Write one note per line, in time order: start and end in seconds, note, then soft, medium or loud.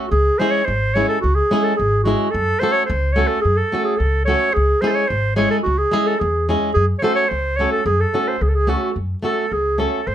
0.00 0.10 F#4 medium
0.11 0.28 C#2 medium
0.11 0.40 G#4 medium
0.38 0.61 G#3 medium
0.38 0.61 C#4 medium
0.38 0.61 E4 medium
0.38 0.62 G#4 medium
0.38 0.53 C5 medium
0.51 0.67 C#5 medium
0.65 1.01 G#1 medium
0.65 0.96 C5 medium
0.94 1.17 G#3 soft
0.94 1.17 C#4 medium
0.94 1.17 E4 medium
0.94 1.18 G#4 medium
0.94 1.08 C#5 medium
1.09 1.21 A4 medium
1.21 1.40 C#2 medium
1.21 1.36 F#4 medium
1.35 1.65 G#4 medium
1.51 1.72 G#3 medium
1.51 1.72 C#4 medium
1.51 1.73 E4 medium
1.51 1.73 G#4 medium
1.63 1.78 A4 medium
1.76 2.13 G#1 medium
1.76 2.03 G#4 medium
2.03 2.27 G#3 medium
2.03 2.27 C#4 soft
2.03 2.28 E4 medium
2.03 2.32 F#4 medium
2.07 2.28 G#4 medium
2.30 2.51 F#2 medium
2.30 2.61 A4 medium
2.60 2.83 A3 medium
2.60 2.83 C#4 medium
2.60 2.83 F#4 medium
2.60 2.84 A4 medium
2.60 2.74 C5 loud
2.73 2.85 C#5 medium
2.86 3.23 C#2 medium
2.86 3.15 C5 medium
3.13 3.38 A3 medium
3.13 3.38 C#4 medium
3.13 3.38 F#4 medium
3.13 3.29 C#5 medium
3.18 3.39 A4 medium
3.27 3.43 A4 medium
3.41 3.61 F#2 medium
3.41 3.58 G#4 medium
3.57 3.86 A4 medium
3.72 3.94 A3 medium
3.72 3.94 C#4 medium
3.72 3.94 F#4 medium
3.72 3.95 A4 medium
3.84 3.99 G#4 medium
3.98 4.33 C#2 medium
3.98 4.25 A4 medium
4.25 4.49 A3 medium
4.25 4.49 C#4 medium
4.25 4.49 F#4 medium
4.25 4.55 C#5 medium
4.29 4.50 A4 medium
4.53 4.73 C#2 medium
4.53 4.83 G#4 medium
4.81 5.03 G#3 medium
4.81 5.04 C#4 medium
4.81 5.04 E4 medium
4.81 5.04 G#4 medium
4.81 4.88 C5 medium
4.86 4.89 A4 medium
4.86 4.97 C5 medium
4.95 5.10 C#5 medium
5.08 5.44 G#1 medium
5.08 5.36 C5 medium
5.36 5.58 G#3 medium
5.36 5.59 C#4 medium
5.36 5.59 E4 medium
5.36 5.59 G#4 medium
5.36 5.50 C#5 medium
5.51 5.57 A4 medium
5.63 5.83 C#2 medium
5.63 5.80 F#4 medium
5.78 6.08 G#4 medium
5.91 6.13 G#3 medium
5.91 6.14 C#4 medium
5.91 6.14 E4 medium
5.91 6.14 G#4 medium
6.07 6.21 A4 medium
6.19 6.54 E2 medium
6.19 6.48 G#4 medium
6.49 6.70 G#3 medium
6.49 6.70 C#4 medium
6.49 6.70 E4 soft
6.49 6.70 G#4 medium
6.74 6.93 F#2 medium
6.74 6.86 G#4 loud
6.99 7.24 A3 medium
6.99 7.15 C5 medium
6.99 7.04 C#5 medium
7.03 7.24 C#4 medium
7.03 7.25 F#4 medium
7.03 7.25 A4 medium
7.15 7.31 C#5 medium
7.29 7.64 C#2 medium
7.29 7.58 C5 medium
7.56 7.80 A3 medium
7.56 7.80 C#4 medium
7.56 7.71 C#5 medium
7.61 7.81 F#4 medium
7.61 7.81 A4 medium
7.71 7.85 A4 medium
7.86 8.02 F#2 medium
7.86 8.02 G#4 medium
8.00 8.30 A4 medium
8.14 8.35 A3 medium
8.14 8.35 C#4 medium
8.14 8.35 F#4 medium
8.14 8.36 A4 medium
8.28 8.44 C5 medium
8.41 8.74 C#2 medium
8.41 8.50 G#4 medium
8.48 8.56 A4 medium
8.55 8.71 G#4 medium
8.67 8.89 A3 medium
8.67 8.90 C#4 medium
8.67 8.90 F#4 medium
8.67 8.97 F#4 medium
8.67 8.90 A4 medium
8.96 9.13 F#2 medium
9.23 9.44 A3 medium
9.23 9.45 C#4 medium
9.23 9.45 F#4 medium
9.23 9.54 A4 medium
9.23 9.46 A4 medium
9.52 9.85 C#2 medium
9.52 9.80 G#4 medium
9.78 10.00 A3 medium
9.78 10.00 C#4 medium
9.78 10.00 F#4 soft
9.78 10.09 A4 medium
9.78 10.01 A4 medium
10.07 10.15 G#2 medium
10.07 10.15 C5 loud